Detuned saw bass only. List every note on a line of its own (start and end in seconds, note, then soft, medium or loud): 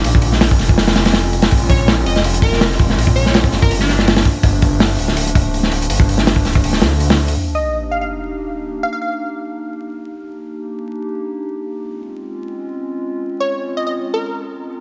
0.05 0.58 A#1 loud
0.60 0.96 F1 medium
0.96 1.50 F1 loud
1.52 2.05 A#1 loud
2.06 2.78 F1 medium
2.80 2.96 F1 medium
2.97 3.51 A#1 loud
3.52 4.24 G1 medium
4.43 4.97 G1 loud
4.99 5.71 D1 medium
5.72 5.89 D1 loud
5.90 6.44 G1 loud
6.45 6.83 D1 medium
6.82 7.35 D2 loud